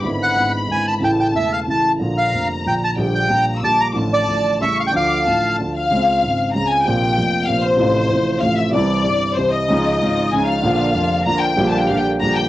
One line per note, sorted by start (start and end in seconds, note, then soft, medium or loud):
0.02 0.36 G#1 soft
0.02 0.03 G#2 soft
0.02 0.33 G#2 soft
0.02 0.34 D3 soft
0.02 0.35 G#3 soft
0.02 0.36 B3 soft
0.02 1.02 B5 medium
0.06 0.36 E4 soft
0.23 0.52 F#5 medium
0.35 0.67 G#1 soft
0.35 0.36 G#2 soft
0.35 0.66 G#2 soft
0.35 0.66 D3 soft
0.35 0.67 G#3 soft
0.35 0.68 B3 soft
0.39 0.69 E4 soft
0.67 1.00 G#1 soft
0.67 1.00 G#2 soft
0.67 1.00 D3 soft
0.67 1.00 G#3 soft
0.67 1.01 B3 soft
0.67 1.01 E4 soft
0.72 0.86 G#5 medium
0.87 0.94 A5 medium
1.00 1.33 A1 soft
1.00 1.33 A2 soft
1.00 1.30 C#3 soft
1.00 1.32 E3 soft
1.00 1.33 A3 soft
1.00 1.84 A5 medium
1.04 1.34 E4 soft
1.04 1.11 G5 medium
1.20 1.27 G5 medium
1.32 1.66 E1 soft
1.32 1.66 E2 soft
1.32 1.64 C#3 soft
1.32 1.66 E3 soft
1.32 1.66 A3 soft
1.36 1.67 E4 soft
1.36 1.52 E5 medium
1.53 1.60 F5 medium
1.66 1.99 A1 soft
1.66 1.99 A2 soft
1.66 1.98 C#3 soft
1.66 1.99 E3 soft
1.66 1.99 A3 soft
1.66 2.00 E4 soft
1.70 1.92 A5 medium
1.99 2.32 A#1 soft
1.99 2.32 A#2 soft
1.99 2.30 D3 soft
1.99 2.31 F3 soft
1.99 2.32 A#3 soft
1.99 2.33 F4 soft
1.99 2.94 A#5 medium
2.18 2.48 F5 medium
2.31 2.64 F1 soft
2.31 2.64 F2 soft
2.31 2.62 D3 soft
2.31 2.64 F3 soft
2.31 2.65 A#3 soft
2.31 2.65 F4 soft
2.64 2.96 A#1 soft
2.64 2.96 A#2 soft
2.64 2.95 D3 soft
2.64 2.97 F3 soft
2.64 2.97 A#3 soft
2.64 2.98 F4 soft
2.64 2.75 G5 medium
2.84 2.91 A5 medium
2.96 3.28 A#1 soft
2.96 3.28 A#2 soft
2.96 3.26 D3 soft
2.96 3.27 G3 soft
2.96 3.29 A#3 soft
2.96 3.30 G4 soft
2.96 3.30 G5 medium
3.15 3.45 G5 medium
3.28 3.61 A#1 soft
3.28 3.61 A#2 soft
3.28 3.59 D3 soft
3.28 3.60 G3 soft
3.28 3.61 A#3 soft
3.28 3.62 G4 soft
3.28 3.55 A#5 medium
3.57 3.92 D3 soft
3.57 3.64 E6 soft
3.62 3.94 A#1 soft
3.62 3.94 A#2 soft
3.62 3.93 G3 soft
3.62 3.94 A#3 soft
3.62 3.95 G4 soft
3.62 3.80 A5 medium
3.62 3.96 D6 medium
3.80 3.87 A#5 medium
3.93 4.26 A1 medium
3.93 4.24 A2 medium
3.93 4.25 D3 soft
3.93 4.26 F3 soft
3.93 4.26 A3 soft
3.93 4.61 A5 medium
3.97 4.27 F4 medium
4.13 4.58 D5 medium
4.26 4.59 A1 soft
4.26 4.59 A2 soft
4.26 4.58 D3 soft
4.26 4.59 F3 soft
4.26 4.59 A3 soft
4.26 4.60 F4 soft
4.59 4.91 A1 soft
4.59 4.92 A2 soft
4.59 4.90 C#3 soft
4.59 4.91 G3 soft
4.59 4.92 A3 soft
4.59 4.78 E5 medium
4.59 4.94 C#6 medium
4.63 4.92 E4 soft
4.80 4.83 F5 medium
4.87 4.94 G5 medium
4.91 5.24 D2 medium
4.91 5.22 D3 medium
4.91 5.24 F3 soft
4.91 5.24 A3 soft
4.91 5.25 F4 soft
4.91 5.24 D6 medium
4.96 5.57 F5 medium
5.24 5.57 A1 soft
5.24 5.57 A2 soft
5.24 5.56 D3 soft
5.24 5.57 F3 soft
5.24 5.58 A3 soft
5.24 5.72 A5 medium
5.29 5.59 F4 soft
5.59 5.90 D2 soft
5.59 5.90 D3 soft
5.59 5.90 F3 soft
5.59 5.91 A3 soft
5.59 5.91 F4 soft
5.75 6.51 F5 medium
5.91 6.22 C#2 soft
5.91 6.20 C#3 soft
5.91 6.22 G#3 soft
5.91 6.23 C4 soft
5.91 6.23 F4 soft
6.21 6.54 G#1 soft
6.21 6.54 G#2 soft
6.21 6.52 C#3 soft
6.21 6.53 G#3 soft
6.21 6.54 C4 soft
6.26 6.55 F4 soft
6.53 6.85 C#2 soft
6.53 6.86 C#3 soft
6.53 6.85 G#3 soft
6.53 6.86 C4 soft
6.53 6.69 A#5 medium
6.58 6.87 F4 soft
6.69 6.86 G#5 medium
6.84 7.17 A#1 medium
6.84 7.17 A#2 medium
6.84 7.15 C3 soft
6.84 7.16 F3 soft
6.84 7.17 A#3 soft
6.84 7.48 G5 medium
6.90 7.18 F4 medium
7.16 7.47 F1 soft
7.16 7.48 F2 soft
7.16 7.45 C3 soft
7.16 7.47 F3 soft
7.16 7.48 A#3 soft
7.16 7.48 F4 soft
7.47 7.79 A#1 soft
7.47 7.79 A#2 soft
7.47 7.75 C3 soft
7.47 7.77 F3 soft
7.47 7.79 A#3 soft
7.47 7.79 F4 soft
7.47 7.64 F5 medium
7.62 8.42 C5 medium
7.77 8.09 A1 medium
7.77 8.09 A2 medium
7.77 8.07 C3 medium
7.77 8.09 F3 soft
7.77 8.10 A3 soft
7.77 8.10 F4 medium
8.09 8.41 A1 soft
8.09 8.41 A2 soft
8.09 8.39 C3 soft
8.09 8.40 F3 soft
8.09 8.41 A3 soft
8.09 8.42 F4 soft
8.40 8.72 A1 soft
8.40 8.73 A2 soft
8.40 8.70 C3 soft
8.40 8.72 F3 soft
8.40 8.73 A3 soft
8.40 8.57 F5 medium
8.44 8.74 F4 soft
8.56 8.73 E5 medium
8.72 9.04 C2 medium
8.72 8.73 C3 medium
8.72 9.02 C3 medium
8.72 9.03 E3 soft
8.72 9.04 G3 soft
8.72 9.33 D5 medium
8.76 9.05 E4 soft
9.04 9.36 G1 soft
9.04 9.36 G2 soft
9.04 9.35 C3 soft
9.04 9.36 E3 soft
9.04 9.36 G3 soft
9.04 9.37 E4 soft
9.35 9.69 C2 soft
9.35 9.38 C3 soft
9.35 9.69 C3 soft
9.35 9.68 E3 soft
9.35 9.52 C5 medium
9.39 9.69 G3 soft
9.39 9.70 E4 soft
9.52 10.32 D#5 medium
9.68 10.00 C#2 medium
9.68 9.99 C#3 medium
9.68 10.00 F3 soft
9.68 10.00 G#3 soft
9.68 10.00 C#4 soft
9.68 10.00 D#4 soft
9.68 10.01 D#4 soft
9.68 10.00 F4 medium
10.00 10.32 G#1 soft
10.00 10.32 G#2 soft
10.00 10.30 C#3 soft
10.00 10.31 F3 soft
10.00 10.32 G#3 soft
10.00 10.32 C#4 soft
10.00 10.32 D#4 soft
10.00 10.33 D#4 soft
10.00 10.32 F4 soft
10.31 10.63 C#2 soft
10.31 10.33 C#3 soft
10.31 10.63 C#3 soft
10.31 10.61 F3 soft
10.31 10.63 G#3 soft
10.31 10.63 C#4 soft
10.31 10.63 D#4 soft
10.31 10.63 F4 soft
10.31 10.48 G#5 medium
10.35 10.64 D#4 soft
10.46 11.21 F5 medium
10.61 10.94 A#1 medium
10.61 10.94 A#2 medium
10.61 10.92 D3 medium
10.61 10.93 F3 soft
10.61 10.94 A#3 soft
10.61 10.94 A#3 medium
10.61 10.94 D4 soft
10.61 10.94 F4 medium
10.66 10.95 F4 medium
10.93 11.25 F1 soft
10.93 11.25 F2 soft
10.93 11.23 D3 soft
10.93 11.25 F3 soft
10.93 11.25 A#3 soft
10.93 11.26 A#3 soft
10.93 11.26 D4 soft
10.93 11.26 F4 soft
11.25 11.56 A#1 soft
11.25 11.56 A#2 soft
11.25 11.54 D3 soft
11.25 11.56 F3 soft
11.25 11.56 A#3 soft
11.25 11.57 A#3 soft
11.25 11.57 D4 soft
11.25 11.57 F4 soft
11.25 11.42 A#5 medium
11.29 11.58 F4 soft
11.40 11.68 G5 medium
11.56 11.88 A#1 medium
11.56 11.88 A#2 medium
11.56 11.86 D3 medium
11.56 11.87 G3 medium
11.56 11.88 A#3 medium
11.56 11.88 A#3 soft
11.56 11.88 D4 medium
11.56 11.88 G4 medium
11.56 11.89 G4 medium
11.69 11.78 A5 medium
11.78 11.87 G5 medium
11.88 12.20 A#1 soft
11.88 12.20 A#2 soft
11.88 12.18 D3 soft
11.88 12.19 G3 soft
11.88 12.19 A#3 soft
11.88 12.20 A#3 soft
11.88 12.19 D4 soft
11.88 12.20 G4 soft
11.88 11.97 F5 medium
11.92 12.21 G4 soft
11.97 12.06 G5 medium
12.20 12.49 A#1 soft
12.20 12.49 A#2 soft
12.20 12.49 D3 soft
12.20 12.49 G3 soft
12.20 12.49 A#3 soft
12.20 12.49 D4 soft
12.20 12.49 G4 soft
12.20 12.36 A#5 loud
12.24 12.49 G4 soft
12.37 12.49 G5 medium